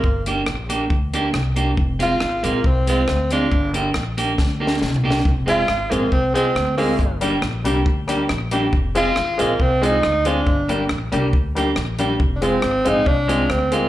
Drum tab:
HH |---x-----x-----x-----x--|---x-----x-----x-----x--|---x-----x--------------|---x-----x-----x-----o--|
SD |------r-----------r-----|------r-----------r-----|------r-----o---o-o---o-|------r-----------r-----|
FT |------------------------|------------------------|--------------------o---|------------------------|
BD |o-----------o-----------|o-----------o-----------|o-----------o-----------|o-----------o-----------|

HH |p--x-----x-----x-----x--|---x-----x-----x-----x--|---x-----x-----x-----x--|---x-----x-----x-----x--|
SD |------r--------r--r-----|------r-----------r-----|------r-----------r-----|------r-----------r-----|
FT |------------------------|------------------------|------------------------|------------------------|
BD |o-----------o-----------|o-----------o-----------|o-----------o-----------|o-----------o-----------|